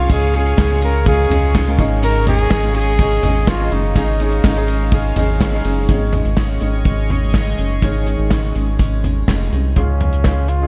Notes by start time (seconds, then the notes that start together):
Already playing: G#2 G#3 C#4 F4 G#4 A#4 C#5 F5 C#6
0.08 C#2 G#2 C#3 G#3 C#4 F4 G#4, kick, ride, tambourine
0.32 G#3 C#4 F4 G#4, ride, tambourine
0.36 G#4
0.46 ride
0.56 C#2 C#3 G#3 C#4 F4 G#4, kick, snare, clap, ride, tambourine
0.70 G#3 C#4 F4 G#4, ride
0.81 C#4 F4 G#4 A#4, ride, tambourine
1.05 G#3 C#4 F4 G#4, kick, ride, tambourine
1.29 C#2 G#3 C#4 F4 G#4, floor tom, ride, tambourine
1.54 C#3 G#3 C#4 F4 G#4, kick, snare, clap, ride, tambourine
1.67 G#3 C#4 F4 A#4
1.78 G#1 G#2 D#3 G#3 C#4 D#4 G#4 D#5, kick, ride, tambourine
2.02 G#2 C#3 G#3 C#4 D#4 G#4 A#4, ride, tambourine
2.26 G#3 C#4 D#4 G#4, floor tom, ride, tambourine
2.39 ride
2.50 G#1 G#2 C#3 G#3 C#4 D#4 G#4, kick, snare, clap, ride, tambourine
2.63 G#3 C#4 D#4 F4, ride
2.75 G#3 C#4 D#4 G#4, ride, tambourine
2.99 G#3 C#4 D#4 G#4, kick, ride, tambourine
3.23 G#1 G#3 C#4 D#4 G#4, floor tom, ride, tambourine
3.35 tambourine
3.47 G#1 G#2 C#3 G#3 C#4 D#4 F4 G#4, kick, snare, clap, ride, tambourine
3.60 G#3 C#4 D#4 G#4
3.71 F#1 G#2 D#3 G#3 C#4 D#4 G#4 F5, ride, tambourine
3.95 G#1 G#2 C#3 G#3 C#4 D#4 G#4, kick, ride, tambourine
4.08 tambourine
4.20 G#3 C#4 D#4 G#4, ride, tambourine
4.32 ride
4.44 G#1 G#2 C#3 G#3 C#4 D#4 G#4, kick, snare, clap, ride, tambourine
4.56 G#3 C#4 D#4 G#4, ride
4.68 G#3 C#4 D#4 G#4, ride, tambourine
4.81 tambourine
4.92 G#3 C#4 D#4 G#4, kick, ride, tambourine
5.16 G#1 G#3 C#4 D#4 G#4, floor tom, ride, tambourine
5.30 tambourine
5.40 G#2 C#3 G#3 C#4 D#4 G#4, kick, snare, clap, ride, tambourine
5.52 G#3 C#4 D#4 G#4
5.64 F#1 G#3 C#4 D#4 G#4, ride, tambourine
5.88 G#1 G#2 C#3 D#3 G#3 C#4 D#4 G#4 C#5 D#5 C#6, kick, closed hi-hat
6.12 G#3 C#4 D#4 G#4, closed hi-hat, floor tom
6.25 G#1, closed hi-hat
6.37 G#2 C#3 G#3 C#4 D#4 G#4, kick, snare, clap, closed hi-hat
6.60 G#1 D#3 G#3 C#4 D#4 G#4, closed hi-hat
6.85 G#1 G#3 C#4 D#4 G#4, kick, closed hi-hat
7.10 G#3 C#4 D#4 G#4, closed hi-hat, floor tom
7.33 G#2 C#3 G#3 C#4 D#4 G#4, kick, snare, clap, closed hi-hat
7.58 F#1 G#3 C#4 D#4 G#4, closed hi-hat
7.82 G#1 G#2 C#3 D#3 G#3 C#4 D#4 G#4, kick, closed hi-hat
8.06 G#3 C#4 D#4 G#4, closed hi-hat
8.19 G#1
8.30 G#2 C#3 G#3 C#4 D#4 G#4, kick, snare, clap, closed hi-hat
8.43 closed hi-hat
8.55 G#1 G#3 C#4 D#4 G#4, closed hi-hat
8.79 G#1 G#3 C#4 D#4 G#4, kick, closed hi-hat
9.03 G#3 C#4 D#4 G#4, closed hi-hat, floor tom
9.28 F1 G#2 C#3 G#3 C#4 D#4 G#4, kick, snare, clap, closed hi-hat
9.52 C2 G#3 C#4 D#4 G#4, closed hi-hat
9.76 C#2 G#2 G#3 C#4 F4 G#4, kick, closed hi-hat
10.00 closed hi-hat, floor tom
10.13 closed hi-hat
10.24 G#3 C#4 F4 G#4, kick, snare, clap, closed hi-hat
10.48 F4, closed hi-hat
10.61 G#3 C#4 F4 G#4